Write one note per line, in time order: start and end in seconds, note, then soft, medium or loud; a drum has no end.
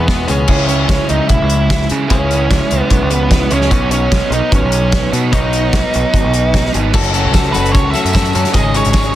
0.00 0.25 E2 medium
0.00 0.30 B3 medium
0.00 0.23 B4 medium
0.07 0.26 E2 medium
0.07 0.27 B2 medium
0.07 0.27 E3 loud
0.07 0.27 G#3 loud
0.07 0.28 B3 loud
0.07 0.28 G#4 medium
0.07 kick loud
0.07 snare loud
0.27 0.47 C#2 medium
0.27 0.47 E2 medium
0.27 0.47 B2 medium
0.27 0.47 E3 medium
0.27 0.47 G#3 medium
0.27 0.48 B3 medium
0.27 0.66 C#4 medium
0.27 0.48 G#4 medium
0.27 closed hi-hat medium
0.48 0.85 C#2 loud
0.48 2.09 C#3 medium
0.48 2.09 G#3 medium
0.48 2.11 C#4 medium
0.48 2.10 E4 medium
0.48 2.10 G#4 medium
0.48 kick loud
0.48 crash loud
0.68 0.89 C#4 medium
0.68 closed hi-hat medium
0.89 0.98 C#2 medium
0.89 1.09 C#4 loud
0.89 kick loud
0.89 snare loud
0.89 closed hi-hat medium
1.09 1.19 C#2 medium
1.09 1.29 D#4 loud
1.09 closed hi-hat medium
1.29 1.39 B1 medium
1.29 1.86 E4 loud
1.29 kick loud
1.29 closed hi-hat medium
1.42 1.86 C#2 medium
1.50 closed hi-hat medium
1.70 kick loud
1.70 snare loud
1.70 closed hi-hat medium
1.81 snare soft
1.89 2.09 C#3 medium
1.89 2.10 G#3 medium
1.89 2.12 C#4 medium
1.89 2.09 E4 medium
1.89 closed hi-hat medium
2.09 2.47 C#2 loud
2.09 3.70 C#3 medium
2.09 3.70 G#3 medium
2.09 2.82 C#4 medium
2.09 3.71 C#4 medium
2.09 3.71 E4 loud
2.09 3.71 G#4 medium
2.09 kick loud
2.09 closed hi-hat medium
2.31 closed hi-hat medium
2.51 2.60 C#2 medium
2.51 kick loud
2.51 snare loud
2.51 closed hi-hat medium
2.71 2.80 C#2 medium
2.71 closed hi-hat medium
2.82 3.11 B3 medium
2.90 3.00 B1 loud
2.90 kick loud
2.90 closed hi-hat medium
3.02 3.47 C#2 medium
3.11 3.53 B3 medium
3.11 closed hi-hat medium
3.31 kick loud
3.31 snare loud
3.31 closed hi-hat medium
3.51 3.69 C#2 medium
3.51 3.70 G#3 medium
3.51 3.89 C#4 medium
3.51 3.72 C#4 medium
3.51 3.70 E4 medium
3.51 closed hi-hat medium
3.61 snare soft
3.70 4.07 B1 loud
3.70 5.13 F#3 medium
3.70 5.31 B3 medium
3.70 5.31 D#4 medium
3.70 5.33 F#4 medium
3.70 6.90 B4 medium
3.70 5.34 C#5 medium
3.70 6.90 D#5 medium
3.70 6.90 F#5 medium
3.70 6.90 C#6 medium
3.70 kick loud
3.70 closed hi-hat medium
3.91 4.29 C#4 medium
3.91 closed hi-hat medium
4.12 4.21 B1 medium
4.12 kick loud
4.12 snare loud
4.12 closed hi-hat medium
4.30 4.40 B1 loud
4.30 4.53 D#4 loud
4.30 closed hi-hat medium
4.52 4.61 G#1 loud
4.52 5.09 C#4 medium
4.52 kick loud
4.52 closed hi-hat medium
4.62 5.07 B1 loud
4.72 closed hi-hat medium
4.92 kick loud
4.92 snare loud
4.92 closed hi-hat medium
5.12 5.30 B2 medium
5.12 5.31 F#3 medium
5.12 5.32 B3 medium
5.12 5.31 D#4 medium
5.12 closed hi-hat medium
5.32 5.69 B1 loud
5.32 6.72 F#3 medium
5.32 6.92 B3 medium
5.32 6.70 D#4 medium
5.32 6.93 D#4 medium
5.32 6.93 F#4 medium
5.32 6.93 C#5 medium
5.32 kick loud
5.32 closed hi-hat medium
5.53 closed hi-hat medium
5.73 5.82 B1 medium
5.73 kick loud
5.73 snare loud
5.73 closed hi-hat medium
5.94 6.03 B1 loud
5.94 closed hi-hat medium
6.14 6.23 G#1 medium
6.14 kick loud
6.14 closed hi-hat medium
6.24 6.69 B1 medium
6.34 closed hi-hat medium
6.54 kick loud
6.54 snare loud
6.54 closed hi-hat medium
6.65 snare soft
6.73 6.92 G#1 medium
6.73 6.93 F#3 medium
6.73 6.92 B3 medium
6.73 6.92 D#4 medium
6.73 closed hi-hat medium
6.93 7.27 F#1 loud
6.93 7.12 F#3 loud
6.93 7.13 A3 medium
6.93 7.13 C#4 loud
6.93 7.13 F#4 loud
6.93 8.53 A4 medium
6.93 7.13 A4 loud
6.93 9.15 C#5 medium
6.93 8.52 F#5 medium
6.93 8.53 C#6 medium
6.93 kick loud
6.93 crash loud
6.93 tambourine medium
7.03 closed hi-hat medium
7.13 7.32 F#3 medium
7.13 7.33 A3 medium
7.13 7.34 C#4 medium
7.13 7.33 F#4 medium
7.13 7.33 A4 medium
7.13 closed hi-hat medium
7.25 7.52 C#2 medium
7.33 7.52 F#3 medium
7.33 7.54 A3 medium
7.33 7.53 C#4 medium
7.33 7.53 F#4 medium
7.33 7.53 A4 loud
7.33 kick loud
7.33 snare loud
7.33 closed hi-hat loud
7.33 tambourine loud
7.44 closed hi-hat soft
7.44 tambourine soft
7.52 7.73 F#1 loud
7.52 7.72 F#3 medium
7.52 7.73 A3 medium
7.52 7.74 C#4 loud
7.52 7.73 F#4 loud
7.52 7.73 A4 loud
7.52 7.74 B4 medium
7.52 closed hi-hat medium
7.52 tambourine medium
7.64 closed hi-hat soft
7.64 tambourine soft
7.72 7.93 C#2 medium
7.72 7.93 F#3 loud
7.72 7.93 A3 medium
7.72 7.94 C#4 loud
7.72 7.93 F#4 loud
7.72 7.93 A4 loud
7.72 7.91 C#5 medium
7.72 kick loud
7.72 closed hi-hat loud
7.91 8.14 F#3 medium
7.91 8.14 A3 medium
7.91 8.15 C#4 medium
7.91 8.14 F#4 medium
7.91 8.14 A4 medium
7.91 8.30 E5 loud
7.91 closed hi-hat medium
7.91 tambourine medium
8.04 8.31 F#2 medium
8.04 closed hi-hat medium
8.04 tambourine soft
8.13 8.33 F#3 medium
8.13 8.34 A3 medium
8.13 8.34 C#4 medium
8.13 8.34 F#4 medium
8.13 8.34 A4 medium
8.13 kick loud
8.13 snare loud
8.13 closed hi-hat loud
8.13 tambourine loud
8.25 closed hi-hat medium
8.33 8.44 F#2 loud
8.33 8.53 F#3 medium
8.33 8.54 A3 medium
8.33 8.55 C#4 medium
8.33 8.54 F#4 medium
8.33 8.54 A4 medium
8.33 closed hi-hat medium
8.33 tambourine medium
8.45 snare soft
8.45 closed hi-hat soft
8.53 8.81 G#1 loud
8.53 8.73 G#2 medium
8.53 8.74 C#3 medium
8.53 8.74 D#3 loud
8.53 8.74 G#3 medium
8.53 8.75 C#4 loud
8.53 8.74 D#4 medium
8.53 9.15 G#4 medium
8.53 8.75 G#4 medium
8.53 8.75 D#5 loud
8.53 9.15 D#5 medium
8.53 9.15 C#6 medium
8.53 kick loud
8.53 closed hi-hat loud
8.53 tambourine medium
8.74 8.93 G#2 medium
8.74 8.93 C#3 medium
8.74 8.93 D#3 medium
8.74 8.94 G#3 medium
8.74 8.95 C#4 medium
8.74 8.95 D#4 loud
8.74 8.95 G#4 loud
8.74 9.15 C#5 medium
8.74 closed hi-hat medium
8.85 9.12 G#1 medium
8.85 closed hi-hat medium
8.93 9.13 G#2 medium
8.93 9.13 C#3 medium
8.93 9.12 D#3 medium
8.93 9.14 G#3 medium
8.93 9.14 C#4 medium
8.93 9.14 D#4 medium
8.93 9.15 G#4 medium
8.93 kick loud
8.93 snare loud
8.93 closed hi-hat loud
8.93 tambourine loud
9.04 closed hi-hat soft
9.04 tambourine soft